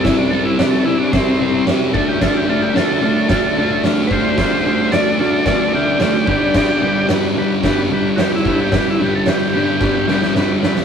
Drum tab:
CC |----------------|x---------------|----------------|x---------------|
HH |o---o---o---o---|----o---o---o---|o---o---o---o---|----o---o---o---|
SD |o---o---o---o---|o---o---o---o---|o---o---o---o---|o---o---o---o---|
BD |o-------o-----o-|o-------o-----o-|o-------o-----o-|o-------o-----o-|

CC |----------------|
HH |o---o-----------|
SD |o---o---o-ooo-oo|
BD |o-------o-------|